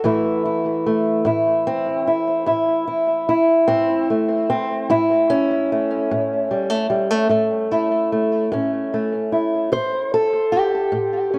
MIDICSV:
0, 0, Header, 1, 2, 480
1, 0, Start_track
1, 0, Tempo, 807537
1, 29, Time_signature, 12, 3, 24, 8
1, 6768, End_track
2, 0, Start_track
2, 0, Title_t, "Steel-string acoustic guitar"
2, 0, Program_c, 0, 25
2, 23, Note_on_c, 0, 45, 72
2, 26, Note_on_c, 0, 52, 49
2, 30, Note_on_c, 0, 57, 48
2, 33, Note_on_c, 0, 64, 51
2, 267, Note_off_c, 0, 64, 0
2, 270, Note_on_c, 0, 64, 44
2, 457, Note_off_c, 0, 45, 0
2, 511, Note_off_c, 0, 57, 0
2, 514, Note_on_c, 0, 57, 45
2, 742, Note_on_c, 0, 45, 74
2, 748, Note_off_c, 0, 64, 0
2, 750, Note_on_c, 0, 64, 51
2, 992, Note_on_c, 0, 60, 89
2, 1176, Note_off_c, 0, 45, 0
2, 1229, Note_off_c, 0, 60, 0
2, 1230, Note_off_c, 0, 64, 0
2, 1233, Note_on_c, 0, 64, 45
2, 1465, Note_on_c, 0, 45, 71
2, 1467, Note_off_c, 0, 64, 0
2, 1469, Note_on_c, 0, 64, 50
2, 1707, Note_off_c, 0, 64, 0
2, 1709, Note_on_c, 0, 64, 49
2, 1897, Note_off_c, 0, 45, 0
2, 1952, Note_off_c, 0, 64, 0
2, 1954, Note_on_c, 0, 64, 79
2, 2185, Note_on_c, 0, 60, 100
2, 2188, Note_on_c, 0, 45, 61
2, 2425, Note_off_c, 0, 60, 0
2, 2435, Note_off_c, 0, 57, 0
2, 2438, Note_on_c, 0, 57, 45
2, 2618, Note_off_c, 0, 45, 0
2, 2669, Note_off_c, 0, 64, 0
2, 2673, Note_on_c, 0, 60, 85
2, 2875, Note_off_c, 0, 52, 0
2, 2909, Note_off_c, 0, 60, 0
2, 2911, Note_on_c, 0, 45, 81
2, 2914, Note_on_c, 0, 64, 91
2, 3149, Note_on_c, 0, 61, 112
2, 3340, Note_off_c, 0, 45, 0
2, 3398, Note_off_c, 0, 57, 0
2, 3401, Note_on_c, 0, 57, 49
2, 3629, Note_off_c, 0, 64, 0
2, 3634, Note_on_c, 0, 45, 79
2, 3866, Note_off_c, 0, 57, 0
2, 3869, Note_on_c, 0, 55, 45
2, 3981, Note_off_c, 0, 55, 0
2, 3981, Note_on_c, 0, 57, 44
2, 4061, Note_off_c, 0, 45, 0
2, 4098, Note_off_c, 0, 57, 0
2, 4100, Note_on_c, 0, 55, 51
2, 4223, Note_off_c, 0, 55, 0
2, 4223, Note_on_c, 0, 57, 38
2, 4334, Note_off_c, 0, 57, 0
2, 4335, Note_on_c, 0, 45, 76
2, 4341, Note_on_c, 0, 57, 49
2, 4586, Note_on_c, 0, 64, 46
2, 4772, Note_off_c, 0, 45, 0
2, 4821, Note_off_c, 0, 57, 0
2, 4828, Note_on_c, 0, 57, 45
2, 5063, Note_on_c, 0, 45, 75
2, 5065, Note_off_c, 0, 61, 0
2, 5072, Note_on_c, 0, 61, 45
2, 5306, Note_off_c, 0, 57, 0
2, 5313, Note_on_c, 0, 57, 46
2, 5497, Note_off_c, 0, 45, 0
2, 5539, Note_off_c, 0, 64, 0
2, 5541, Note_on_c, 0, 64, 43
2, 5761, Note_off_c, 0, 57, 0
2, 5761, Note_off_c, 0, 61, 0
2, 5776, Note_on_c, 0, 45, 68
2, 5778, Note_off_c, 0, 64, 0
2, 5781, Note_on_c, 0, 72, 102
2, 6024, Note_off_c, 0, 72, 0
2, 6026, Note_on_c, 0, 69, 98
2, 6214, Note_off_c, 0, 45, 0
2, 6253, Note_on_c, 0, 67, 87
2, 6490, Note_on_c, 0, 45, 71
2, 6738, Note_on_c, 0, 61, 45
2, 6748, Note_off_c, 0, 69, 0
2, 6768, Note_off_c, 0, 45, 0
2, 6768, Note_off_c, 0, 61, 0
2, 6768, Note_off_c, 0, 67, 0
2, 6768, End_track
0, 0, End_of_file